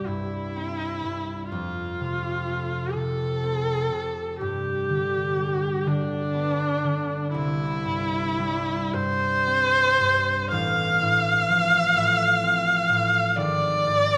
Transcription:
0, 0, Header, 1, 3, 480
1, 0, Start_track
1, 0, Key_signature, 0, "major"
1, 0, Tempo, 970874
1, 750, Time_signature, 6, 3, 24, 8
1, 3632, Tempo, 1060071
1, 5072, Tempo, 953895
1, 6908, End_track
2, 0, Start_track
2, 0, Title_t, "Viola"
2, 0, Program_c, 0, 41
2, 34, Note_on_c, 0, 64, 58
2, 739, Note_off_c, 0, 64, 0
2, 742, Note_on_c, 0, 65, 64
2, 1454, Note_on_c, 0, 69, 73
2, 1461, Note_off_c, 0, 65, 0
2, 2174, Note_off_c, 0, 69, 0
2, 2177, Note_on_c, 0, 67, 67
2, 2899, Note_on_c, 0, 62, 71
2, 2906, Note_off_c, 0, 67, 0
2, 3625, Note_off_c, 0, 62, 0
2, 3628, Note_on_c, 0, 64, 82
2, 4351, Note_on_c, 0, 72, 98
2, 4358, Note_off_c, 0, 64, 0
2, 5062, Note_off_c, 0, 72, 0
2, 5065, Note_on_c, 0, 77, 94
2, 6499, Note_on_c, 0, 74, 95
2, 6507, Note_off_c, 0, 77, 0
2, 6908, Note_off_c, 0, 74, 0
2, 6908, End_track
3, 0, Start_track
3, 0, Title_t, "Harp"
3, 0, Program_c, 1, 46
3, 0, Note_on_c, 1, 36, 42
3, 0, Note_on_c, 1, 55, 31
3, 0, Note_on_c, 1, 60, 39
3, 34, Note_on_c, 1, 43, 34
3, 269, Note_off_c, 1, 60, 0
3, 275, Note_on_c, 1, 60, 35
3, 507, Note_off_c, 1, 43, 0
3, 513, Note_on_c, 1, 43, 32
3, 751, Note_on_c, 1, 41, 48
3, 769, Note_off_c, 1, 36, 0
3, 770, Note_off_c, 1, 43, 0
3, 770, Note_off_c, 1, 55, 0
3, 991, Note_on_c, 1, 48, 35
3, 1221, Note_on_c, 1, 57, 36
3, 1455, Note_off_c, 1, 48, 0
3, 1461, Note_on_c, 1, 48, 37
3, 1692, Note_off_c, 1, 60, 0
3, 1698, Note_on_c, 1, 60, 38
3, 1932, Note_off_c, 1, 48, 0
3, 1937, Note_on_c, 1, 48, 37
3, 2180, Note_on_c, 1, 43, 49
3, 2197, Note_off_c, 1, 57, 0
3, 2198, Note_off_c, 1, 48, 0
3, 2198, Note_off_c, 1, 60, 0
3, 2200, Note_off_c, 1, 41, 0
3, 2417, Note_on_c, 1, 50, 41
3, 2661, Note_on_c, 1, 55, 37
3, 2891, Note_off_c, 1, 50, 0
3, 2897, Note_on_c, 1, 50, 40
3, 3134, Note_on_c, 1, 59, 41
3, 3376, Note_off_c, 1, 50, 0
3, 3382, Note_on_c, 1, 50, 43
3, 3630, Note_on_c, 1, 36, 55
3, 3645, Note_off_c, 1, 59, 0
3, 3647, Note_off_c, 1, 50, 0
3, 3648, Note_off_c, 1, 43, 0
3, 3860, Note_on_c, 1, 43, 44
3, 4098, Note_off_c, 1, 55, 0
3, 4104, Note_on_c, 1, 55, 44
3, 4347, Note_off_c, 1, 43, 0
3, 4353, Note_on_c, 1, 43, 44
3, 4593, Note_on_c, 1, 60, 48
3, 4830, Note_off_c, 1, 43, 0
3, 4835, Note_on_c, 1, 43, 45
3, 5069, Note_on_c, 1, 33, 66
3, 5088, Note_off_c, 1, 55, 0
3, 5091, Note_off_c, 1, 36, 0
3, 5091, Note_off_c, 1, 43, 0
3, 5318, Note_on_c, 1, 45, 45
3, 5556, Note_on_c, 1, 53, 44
3, 5789, Note_off_c, 1, 45, 0
3, 5795, Note_on_c, 1, 45, 45
3, 6024, Note_off_c, 1, 60, 0
3, 6030, Note_on_c, 1, 60, 42
3, 6257, Note_off_c, 1, 45, 0
3, 6263, Note_on_c, 1, 45, 47
3, 6503, Note_on_c, 1, 32, 60
3, 6521, Note_off_c, 1, 33, 0
3, 6521, Note_off_c, 1, 53, 0
3, 6523, Note_off_c, 1, 45, 0
3, 6748, Note_on_c, 1, 44, 49
3, 6908, Note_off_c, 1, 32, 0
3, 6908, Note_off_c, 1, 44, 0
3, 6908, Note_off_c, 1, 60, 0
3, 6908, End_track
0, 0, End_of_file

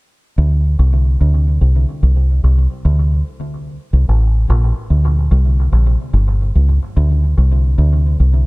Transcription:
0, 0, Header, 1, 2, 480
1, 0, Start_track
1, 0, Tempo, 822143
1, 219, Time_signature, 4, 2, 24, 8
1, 4943, End_track
2, 0, Start_track
2, 0, Title_t, "Fingered electric bass"
2, 0, Program_c, 0, 33
2, 221, Note_on_c, 0, 38, 96
2, 437, Note_off_c, 0, 38, 0
2, 462, Note_on_c, 0, 36, 92
2, 677, Note_off_c, 0, 36, 0
2, 705, Note_on_c, 0, 38, 91
2, 919, Note_off_c, 0, 38, 0
2, 942, Note_on_c, 0, 36, 81
2, 1074, Note_off_c, 0, 36, 0
2, 1184, Note_on_c, 0, 36, 93
2, 1398, Note_off_c, 0, 36, 0
2, 1423, Note_on_c, 0, 36, 81
2, 1555, Note_off_c, 0, 36, 0
2, 1664, Note_on_c, 0, 38, 89
2, 1879, Note_off_c, 0, 38, 0
2, 2295, Note_on_c, 0, 36, 81
2, 2375, Note_off_c, 0, 36, 0
2, 2386, Note_on_c, 0, 33, 86
2, 2600, Note_off_c, 0, 33, 0
2, 2626, Note_on_c, 0, 34, 98
2, 2756, Note_off_c, 0, 34, 0
2, 2862, Note_on_c, 0, 38, 84
2, 3078, Note_off_c, 0, 38, 0
2, 3102, Note_on_c, 0, 36, 97
2, 3318, Note_off_c, 0, 36, 0
2, 3342, Note_on_c, 0, 34, 86
2, 3474, Note_off_c, 0, 34, 0
2, 3581, Note_on_c, 0, 31, 88
2, 3798, Note_off_c, 0, 31, 0
2, 3826, Note_on_c, 0, 37, 87
2, 3957, Note_off_c, 0, 37, 0
2, 4067, Note_on_c, 0, 38, 107
2, 4281, Note_off_c, 0, 38, 0
2, 4307, Note_on_c, 0, 36, 89
2, 4521, Note_off_c, 0, 36, 0
2, 4543, Note_on_c, 0, 38, 95
2, 4759, Note_off_c, 0, 38, 0
2, 4786, Note_on_c, 0, 36, 78
2, 4917, Note_off_c, 0, 36, 0
2, 4943, End_track
0, 0, End_of_file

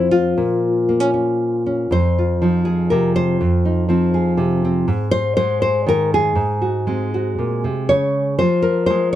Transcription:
0, 0, Header, 1, 2, 480
1, 0, Start_track
1, 0, Key_signature, -4, "minor"
1, 0, Tempo, 509771
1, 351, Time_signature, 3, 2, 24, 8
1, 2280, Tempo, 491400
1, 6120, Tempo, 507614
1, 8769, End_track
2, 0, Start_track
2, 0, Title_t, "Nylon-string guitar"
2, 0, Program_c, 0, 24
2, 0, Note_on_c, 0, 41, 79
2, 0, Note_on_c, 0, 53, 49
2, 0, Note_on_c, 0, 60, 48
2, 0, Note_on_c, 0, 64, 85
2, 0, Note_on_c, 0, 72, 101
2, 103, Note_off_c, 0, 64, 0
2, 107, Note_on_c, 0, 65, 88
2, 343, Note_off_c, 0, 72, 0
2, 350, Note_off_c, 0, 41, 0
2, 353, Note_on_c, 0, 46, 73
2, 382, Note_off_c, 0, 60, 0
2, 836, Note_on_c, 0, 58, 46
2, 942, Note_off_c, 0, 58, 0
2, 942, Note_on_c, 0, 61, 38
2, 1060, Note_off_c, 0, 61, 0
2, 1071, Note_on_c, 0, 61, 44
2, 1555, Note_off_c, 0, 61, 0
2, 1566, Note_on_c, 0, 61, 46
2, 1774, Note_off_c, 0, 46, 0
2, 1777, Note_off_c, 0, 61, 0
2, 1796, Note_on_c, 0, 41, 68
2, 1797, Note_off_c, 0, 65, 0
2, 1810, Note_on_c, 0, 72, 94
2, 1812, Note_off_c, 0, 53, 0
2, 2058, Note_on_c, 0, 65, 43
2, 2275, Note_on_c, 0, 53, 65
2, 2289, Note_on_c, 0, 63, 48
2, 2499, Note_off_c, 0, 65, 0
2, 2503, Note_on_c, 0, 68, 70
2, 2746, Note_off_c, 0, 72, 0
2, 2749, Note_on_c, 0, 70, 82
2, 2762, Note_on_c, 0, 48, 65
2, 2995, Note_off_c, 0, 70, 0
2, 2999, Note_on_c, 0, 72, 96
2, 3230, Note_off_c, 0, 41, 0
2, 3236, Note_off_c, 0, 68, 0
2, 3242, Note_on_c, 0, 41, 74
2, 3245, Note_off_c, 0, 48, 0
2, 3271, Note_off_c, 0, 63, 0
2, 3484, Note_on_c, 0, 63, 47
2, 3699, Note_off_c, 0, 53, 0
2, 3711, Note_on_c, 0, 53, 72
2, 3722, Note_on_c, 0, 60, 53
2, 3955, Note_off_c, 0, 72, 0
2, 3960, Note_on_c, 0, 68, 45
2, 4187, Note_on_c, 0, 48, 74
2, 4449, Note_off_c, 0, 60, 0
2, 4453, Note_on_c, 0, 60, 50
2, 4665, Note_off_c, 0, 53, 0
2, 4667, Note_off_c, 0, 48, 0
2, 4669, Note_off_c, 0, 41, 0
2, 4679, Note_on_c, 0, 44, 82
2, 4906, Note_off_c, 0, 68, 0
2, 4910, Note_on_c, 0, 72, 127
2, 5146, Note_off_c, 0, 72, 0
2, 5157, Note_on_c, 0, 72, 119
2, 5161, Note_on_c, 0, 56, 74
2, 5391, Note_off_c, 0, 72, 0
2, 5403, Note_on_c, 0, 72, 99
2, 5639, Note_off_c, 0, 72, 0
2, 5644, Note_on_c, 0, 51, 75
2, 5663, Note_on_c, 0, 70, 107
2, 5693, Note_off_c, 0, 60, 0
2, 5891, Note_off_c, 0, 70, 0
2, 5913, Note_on_c, 0, 68, 91
2, 6094, Note_off_c, 0, 44, 0
2, 6094, Note_off_c, 0, 51, 0
2, 6122, Note_on_c, 0, 44, 77
2, 6365, Note_off_c, 0, 63, 0
2, 6369, Note_on_c, 0, 66, 42
2, 6398, Note_off_c, 0, 56, 0
2, 6608, Note_on_c, 0, 56, 63
2, 6615, Note_on_c, 0, 60, 47
2, 6846, Note_off_c, 0, 66, 0
2, 6866, Note_on_c, 0, 66, 45
2, 7086, Note_off_c, 0, 44, 0
2, 7096, Note_on_c, 0, 46, 61
2, 7336, Note_off_c, 0, 46, 0
2, 7340, Note_on_c, 0, 48, 58
2, 7558, Note_off_c, 0, 66, 0
2, 7570, Note_off_c, 0, 68, 0
2, 7573, Note_on_c, 0, 73, 102
2, 7579, Note_off_c, 0, 48, 0
2, 7587, Note_on_c, 0, 49, 66
2, 7602, Note_off_c, 0, 60, 0
2, 8039, Note_off_c, 0, 73, 0
2, 8043, Note_on_c, 0, 72, 106
2, 8057, Note_off_c, 0, 56, 0
2, 8058, Note_off_c, 0, 49, 0
2, 8061, Note_on_c, 0, 53, 69
2, 8268, Note_on_c, 0, 70, 81
2, 8483, Note_off_c, 0, 72, 0
2, 8495, Note_on_c, 0, 72, 99
2, 8531, Note_on_c, 0, 56, 69
2, 8740, Note_off_c, 0, 72, 0
2, 8769, Note_off_c, 0, 53, 0
2, 8769, Note_off_c, 0, 56, 0
2, 8769, Note_off_c, 0, 70, 0
2, 8769, End_track
0, 0, End_of_file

